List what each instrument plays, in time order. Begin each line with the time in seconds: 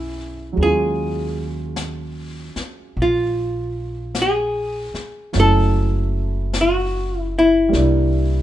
Already playing: upright bass B1, upright piano G#3 B3 C#4 D4 E4 F#4 G#4, hollow-body jazz guitar E4
0.53 upright piano F#3 G#3
0.57 upright bass D#2, upright piano C#4, brush sweep
0.63 upright piano F4, hollow-body jazz guitar G#4
1.76 brush sweep, snare, hi-hat pedal
2.56 muted upright bass stroke, snare
2.95 upright bass A#1, brush sweep
3.02 hollow-body jazz guitar F4
4.15 brush sweep, snare, hi-hat pedal
4.22 hollow-body jazz guitar G#4
4.94 muted upright bass stroke, snare
5.33 upright bass F#1, upright piano F#3 A3 C#4, brush sweep, snare
5.37 upright piano E4, hollow-body jazz guitar A4
6.53 brush sweep, snare, hi-hat pedal
6.61 hollow-body jazz guitar F#4
7.21 hollow-body jazz guitar E4
7.39 hollow-body jazz guitar E4
7.69 upright piano G3 A#3
7.73 upright bass C2, upright piano D4, brush sweep, snare
7.79 upright piano E4